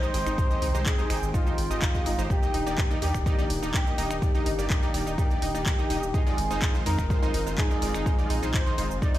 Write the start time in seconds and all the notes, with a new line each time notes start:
Already playing: D#3 G#3 C4 C5 G5
0.03 G#3 D#4 G4 D#5, shaker
0.14 G#1 G#3 D#4 G4 D#5, open hi-hat
0.27 G#1 D#4, finger snap, shaker
0.38 G#3 D#4 G4 C5, kick, shaker
0.51 G#3 D#4 G4 D#5, shaker
0.62 C2 D#4, open hi-hat
0.75 C2 G#3 D#4 G4 C5, shaker
0.86 G#4, kick, clap, shaker
0.99 G#3 D#4 G4 C5, shaker
1.10 G#1 G#3 D#4 G4 C5, finger snap, open hi-hat
1.23 G#1, shaker
1.34 G#3 D#4 F4 G4 C5, kick, shaker
1.47 G#3 D#4 G4 C5, shaker
1.58 G#1, open hi-hat
1.71 G#1 G#3 D#4 G4 D#5, shaker
1.82 D#4, kick, clap, shaker
1.95 G#3 D#4 G4 D#5, kick, shaker
2.06 G#1 D#4, open hi-hat
2.19 G#1 G#3 D#4 G4 C5, shaker
2.30 A#3 D4 D#4 G4, kick, shaker
2.43 A#3 D#4 G4 D#5, shaker
2.54 D#1 D#4, open hi-hat
2.66 D#1 A#3 D#4 G4 D5, shaker
2.78 kick, clap, shaker
2.91 A#3 D#4 G4 D5, shaker
3.02 D#2 A#3 D#4 G4 D5, open hi-hat
3.14 D#1, finger snap, kick, shaker
3.26 A#3 D#4 G4 D5, kick, shaker
3.39 A#3 D#4 G4 D5, shaker
3.50 D#1, open hi-hat
3.62 D#1 A#3 D#4 G4 D5, shaker
3.74 D#4 G4, kick, clap, shaker
3.87 A#3 D#4 G4 D#5, shaker
3.98 D#1 A#3 D#4 G4 D#5, open hi-hat
4.11 D#1 D#4, finger snap, shaker
4.22 A#3 D#4 G4 D5, kick, shaker
4.35 A#3 D#4 G4 D#5, shaker
4.46 G1 D#4, open hi-hat
4.59 G1 A#3 D#4 G4 D5, shaker
4.70 D#4 G4, kick, clap, shaker
4.83 A#3 D#4 G4 D5, shaker
4.94 D#1 A#3 D#4 G4 D5, open hi-hat
5.07 D#1 D#4, shaker
5.18 A#3 D#4 G4 D5, kick, shaker
5.31 A#3 D#4 G4 D5, shaker
5.42 D#1 D#4, open hi-hat
5.55 D#1 A#3 D#4 G4 D5, shaker
5.66 kick, clap, shaker
5.79 A#3 D#4 G4 D#5, shaker
5.90 D#1 A#3 D#4 G4 D#5, open hi-hat
6.03 D#1, shaker
6.14 G#3 C4 D#4 F4 G#4 C5, kick, shaker
6.27 G#3 D#4 F4 D5, shaker
6.38 F1, open hi-hat
6.51 F1 G#3 D#4 F4 C5, shaker
6.62 D#4, kick, clap, shaker
6.75 G#3 D#4 F4 C5, shaker
6.86 F2 G#3 D#4 F4 A#4 C5, open hi-hat
6.99 F1 D#4, finger snap, kick, shaker
7.10 G#3 D#4 F4 C5, kick, shaker
7.23 G#3 D#4 F4 C5, shaker
7.34 F1 D#4, open hi-hat
7.47 F1 G#3 D#4 F4 C5, shaker
7.58 D#4 G#4, kick, clap, shaker
7.71 G#3 D#4 F4 D5, shaker
7.82 F1 G#3 D#4 F4 D5, open hi-hat
7.94 F1 D#4, finger snap, shaker
8.06 G#3 D#4 F4 C5, kick, shaker
8.19 G#3 D#4 F4 D5, shaker
8.30 A#1 D#4, open hi-hat
8.43 A#1 G#3 D#4 F4 C5, shaker
8.54 C5, kick, clap, shaker
8.66 G#3 D#4 F4 C5, shaker
8.78 F1 G#3 D#4 F4 C5, open hi-hat
8.91 F1, shaker
9.02 G#3 D#4 F4 C5 D5, kick, shaker
9.15 G#3 D#4 F4 C5, open hi-hat, shaker